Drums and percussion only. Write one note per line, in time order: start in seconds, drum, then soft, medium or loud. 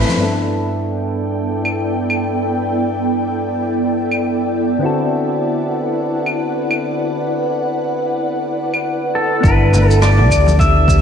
0.09 high conga medium
0.09 shaker soft
1.65 claves medium
2.10 claves medium
4.11 claves medium
6.26 claves medium
6.71 claves medium
8.74 claves medium
9.44 kick loud
9.44 shaker soft
9.73 low conga medium
9.73 shaker medium
9.91 shaker medium
10.02 cross-stick medium
10.02 shaker soft
10.18 low conga loud
10.30 kick medium
10.30 claves medium
10.30 shaker medium
10.46 high conga loud
10.46 shaker medium
10.59 kick loud
10.59 shaker medium
10.88 kick loud
10.88 shaker medium